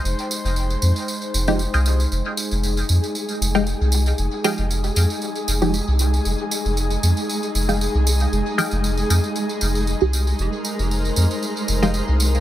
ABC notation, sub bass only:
X:1
M:4/4
L:1/16
Q:"Swing 16ths" 1/4=116
K:Fm
V:1 name="Sub bass" clef=bass
F,,, z2 F,,,2 z F,, z3 F,,,2 z C,,2 z | F,,, z2 F,,,2 z F,, z3 F,,,2 z C,,2 z | F,,, z2 F,,,2 z F,, z3 F,,,2 z C,,2 z | F,,, z2 F,,,2 z F,, z3 F,,,2 z C,,2 z |
F,,, z2 F,,,2 z F,, z3 F,,,2 z C,,2 z | F,,, z2 F,,,2 z F,, z3 F,,,2 z C,,2 z |]